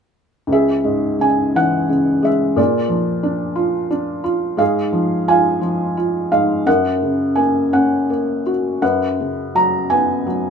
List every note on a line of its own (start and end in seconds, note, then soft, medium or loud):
0.47 2.53 C#2 soft
0.52 1.54 G#4 soft
0.52 1.25 E5 medium
0.84 2.20 G#2 soft
1.19 1.88 C#3 soft
1.19 1.58 G#5 medium
1.55 2.55 E3 soft
1.55 2.27 F#5 medium
1.89 2.56 C#3 soft
2.22 2.56 G#3 soft
2.22 2.59 E5 medium
2.56 4.55 A#2 soft
2.56 3.88 G#4 soft
2.56 3.88 D5 medium
2.89 4.21 F3 soft
3.23 3.89 D4 soft
3.56 4.22 F4 soft
3.91 4.57 D4 soft
4.24 4.58 F4 soft
4.57 6.30 G#2 soft
4.57 5.58 G#4 soft
4.57 5.29 F5 medium
4.93 5.60 F3 soft
5.28 5.96 F4 soft
5.28 6.28 F5 soft
5.28 6.27 G#5 medium
5.61 6.63 F3 soft
5.97 6.64 F4 soft
6.32 6.65 G#2 soft
6.32 6.68 F5 medium
6.67 8.78 F#2 soft
6.67 7.70 A#4 soft
6.67 7.39 F#5 medium
7.02 8.42 C#3 soft
7.36 8.08 A#3 soft
7.36 7.70 G#5 medium
7.73 8.79 C#4 soft
7.73 8.51 F#5 medium
8.10 8.80 A#3 soft
8.46 8.82 F#4 soft
8.82 10.50 F#2 soft
8.82 9.87 B4 soft
8.82 9.56 F#5 medium
9.20 10.50 C#3 soft
9.55 10.25 F#3 soft
9.55 9.91 A#5 medium
9.90 10.50 B3 soft
9.90 10.50 G#5 medium
10.27 10.50 F#3 soft